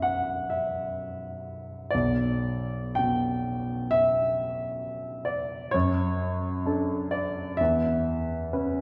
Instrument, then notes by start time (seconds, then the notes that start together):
grand piano
Already playing: B1 F#2 D5 E5
0.02 F#5
0.50 E5
1.90 B1 D5
2.95 B2 G5
3.91 E5
5.25 D5
5.71 F#2 C#5
6.66 D4 A4
7.11 D5
7.57 E2 E5
8.53 C#4 B4